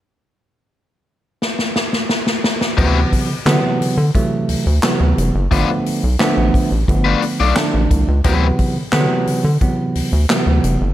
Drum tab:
CC |----------------|x---------------|----------------|----------------|
HH |----------------|--o-x-o-x-o-x-x-|x-o-x-o-x-o-x-x-|x-o-x-o-x-o-x-x-|
CP |----------------|----x-------x---|----x-------x---|----x-------x---|
SD |--------oooooooo|----o-------o---|----o-------o---|----o-------o---|
BD |----------------|o-o-----o-------|o-----o-o-----o-|o-o-----o-------|